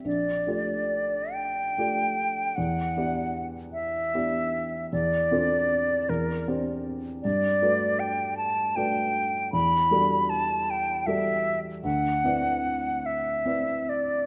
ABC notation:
X:1
M:6/8
L:1/8
Q:3/8=51
K:Gdor
V:1 name="Flute"
d3 g3 | ^f2 z e3 | d3 B z2 | [K:G] d2 g a g2 |
b2 a g e2 | f3 e2 d |]
V:2 name="Grand piano"
B,,, [A,FGd]3 [A,FGd]2 | E,, [=B,EGd]3 [B,EGd]2 | E,, [CFAd]2 E,, [CGcd]2 | [K:G] G,, [A,FBd]3 [A,FBd]2 |
E,, [G,FAd]3 [G,FAd]2 | D,, [CEBd]3 [CEBd]2 |]